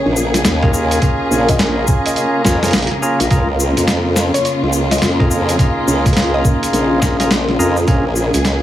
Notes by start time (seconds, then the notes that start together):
Already playing: C#3 A#3 C#4 G#4 A#4 D#5 F5, impact
0.06 A#1
0.16 shaker
0.34 snare, closed hi-hat, shaker
0.45 D#2, snare, closed hi-hat, shaker
0.63 C#4 F4 G#4 A#4, kick, snare
0.67 A#5
0.74 C#4 F4 G#4 A#4, shaker
0.91 closed hi-hat, shaker
1.02 C#4 F4 G#4 A#4, kick, closed hi-hat, shaker
1.31 A#1, shaker
1.49 D#5, kick, closed hi-hat, shaker
1.59 snare, closed hi-hat, shaker
1.87 kick, shaker
2.06 D#5, closed hi-hat, shaker
2.16 D#5, closed hi-hat, shaker
2.45 F2 C#4 F4 G#4 A#4, kick, snare, shaker
2.63 C#4 F4 G#4 A#4, snare, closed hi-hat, shaker
2.65 closed hi-hat
2.68 closed hi-hat
2.71 snare, closed hi-hat, shaker
2.73 A#1, closed hi-hat
2.78 closed hi-hat
2.82 closed hi-hat
2.87 closed hi-hat
2.91 snare
3.02 C#4 F4 G#4 A#4, shaker
3.20 A#1, closed hi-hat, shaker
3.30 C#2 C#4 D#4 F4 G#4 A#4, kick, closed hi-hat, shaker
3.60 shaker
3.76 F2 D#5, closed hi-hat, shaker
3.87 G#4, snare, closed hi-hat, shaker
4.16 snare, shaker
4.34 C#5, closed hi-hat, shaker
4.45 C#5, closed hi-hat, shaker
4.63 C#2
4.73 shaker
4.91 D#5, snare, closed hi-hat, shaker
4.98 F2, snare, closed hi-hat
5.02 closed hi-hat, shaker
5.08 closed hi-hat
5.12 closed hi-hat
5.20 D#4 F4 G#4 A#4, kick, snare
5.30 D#4 F4 G#4 A#4, shaker
5.49 closed hi-hat, shaker
5.59 D#4 F4 G#4 A#4, kick, closed hi-hat, shaker
5.87 C#2, shaker
6.06 kick, closed hi-hat, shaker
6.13 snare, closed hi-hat
6.17 closed hi-hat, shaker
6.22 closed hi-hat
6.34 D#5
6.45 kick, shaker
6.63 closed hi-hat, shaker
6.73 A#1, closed hi-hat, shaker
7.02 D#4 F4 G#4 A#4, kick, snare, shaker
7.20 D#4 F4 G#4 A#4, snare, closed hi-hat, shaker
7.31 snare, closed hi-hat, shaker
7.49 snare
7.59 F2 D#4 F4 G#4 A#4, shaker
7.77 shaker
7.88 A#1 C#4 F4 G#4 A#4, kick, closed hi-hat, shaker
8.14 F5, shaker
8.34 C#2, closed hi-hat, shaker
8.45 snare, closed hi-hat, shaker